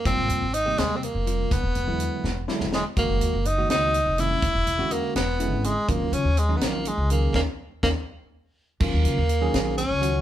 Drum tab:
CC |------------|------------|------------|------------|
HH |x-x-x-x-x-x-|x-x-x-------|x-x-x-x-x-x-|x-x-x-x-x-x-|
SD |------o-----|------o-ooo-|------o-----|------o-----|
BD |o-----------|o-----------|o-----------|o-----------|

CC |------------|------------|x-----------|
HH |x-x-x-x-x-x-|------------|--x-x-x-x-x-|
SD |------o-----|o---o-------|------o-----|
BD |o-----------|o---o-------|o-----------|